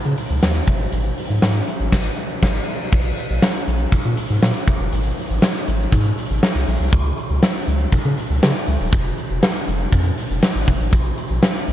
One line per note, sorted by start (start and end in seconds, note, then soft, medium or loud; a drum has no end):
0.05 0.15 C#3 medium
0.18 closed hi-hat medium
0.30 0.40 C#2 medium
0.42 0.61 D#2 loud
0.42 snare loud
0.42 closed hi-hat medium
0.67 0.86 G#1 medium
0.67 kick loud
0.67 open hi-hat medium
0.92 1.11 G#1 loud
0.92 closed hi-hat loud
1.18 closed hi-hat medium
1.30 1.39 G#2 loud
1.42 1.61 G#2 medium
1.42 snare loud
1.42 closed hi-hat medium
1.42 tambourine medium
1.68 closed hi-hat medium
1.80 1.89 G#1 medium
1.92 2.10 G#1 loud
1.92 kick loud
1.92 snare loud
1.92 crash medium
2.43 2.60 G#1 loud
2.43 kick loud
2.43 snare loud
2.43 crash medium
2.92 3.11 A#1 loud
2.92 kick loud
2.92 crash loud
3.18 closed hi-hat medium
3.30 3.40 A#1 loud
3.42 snare loud
3.42 closed hi-hat medium
3.42 tambourine medium
3.67 3.86 A#1 medium
3.67 closed hi-hat medium
3.92 3.98 A#2 soft
3.92 kick medium
3.92 closed hi-hat medium
4.05 4.15 A#2 loud
4.17 closed hi-hat medium
4.30 4.40 G#2 medium
4.42 4.52 A#2 loud
4.42 snare loud
4.42 closed hi-hat medium
4.42 tambourine medium
4.67 4.77 G#1 loud
4.67 kick loud
4.67 open hi-hat medium
4.80 4.90 F#1 medium
4.92 5.11 G#1 loud
4.92 closed hi-hat loud
5.18 closed hi-hat medium
5.30 5.40 G#1 loud
5.42 snare loud
5.42 closed hi-hat loud
5.42 tambourine medium
5.68 5.87 G#1 loud
5.68 closed hi-hat medium
5.92 6.11 G#2 loud
5.92 kick medium
5.92 closed hi-hat medium
6.18 closed hi-hat medium
6.30 6.40 G#1 medium
6.43 snare loud
6.43 closed hi-hat medium
6.43 tambourine medium
6.55 6.65 C2 medium
6.68 6.77 A#1 loud
6.68 open hi-hat medium
6.80 6.90 C2 medium
6.93 7.12 C#2 loud
6.93 kick loud
6.93 closed hi-hat loud
7.18 closed hi-hat medium
7.30 7.40 C#2 loud
7.43 snare loud
7.43 closed hi-hat medium
7.43 tambourine medium
7.67 7.86 C#2 loud
7.67 closed hi-hat medium
7.92 7.97 C#3 soft
7.92 kick medium
7.92 closed hi-hat medium
8.05 8.15 C#3 medium
8.18 closed hi-hat medium
8.30 8.39 C#2 medium
8.43 8.52 C#3 loud
8.43 snare loud
8.43 closed hi-hat medium
8.43 tambourine medium
8.67 8.77 C#2 medium
8.67 open hi-hat medium
8.80 8.90 D#1 medium
8.93 9.12 F1 loud
8.93 kick loud
8.93 closed hi-hat loud
9.18 closed hi-hat medium
9.30 9.40 F1 medium
9.43 snare loud
9.43 closed hi-hat loud
9.43 tambourine medium
9.68 9.86 F1 medium
9.68 closed hi-hat medium
9.92 10.11 F2 loud
9.92 kick medium
9.92 closed hi-hat medium
10.18 closed hi-hat medium
10.30 10.40 F1 loud
10.43 snare loud
10.43 closed hi-hat medium
10.43 tambourine medium
10.55 10.65 G#1 medium
10.68 10.77 F#1 medium
10.68 kick medium
10.68 open hi-hat medium
10.80 10.90 G#1 medium
10.93 11.11 A#1 loud
10.93 kick loud
10.93 closed hi-hat loud
11.18 closed hi-hat medium
11.30 11.40 A#1 loud
11.43 snare loud
11.43 closed hi-hat medium
11.43 tambourine medium
11.68 11.73 A#1 medium
11.68 closed hi-hat medium